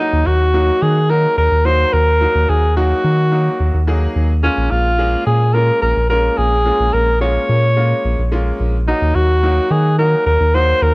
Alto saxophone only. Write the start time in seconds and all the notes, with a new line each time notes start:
0.00 D#4
0.27 F#4
0.82 G#4
1.10 A#4
1.38 A#4
1.65 C5
1.93 A#4
2.49 G#4
2.77 F#4
4.43 C#4
4.71 F4
5.27 G#4
5.54 A#4
5.82 A#4
6.10 A#4
6.37 G#4
6.93 A#4
7.21 C#5
8.88 D#4
9.15 F#4
9.71 G#4
9.99 A#4
10.26 A#4
10.55 C5
10.82 A#4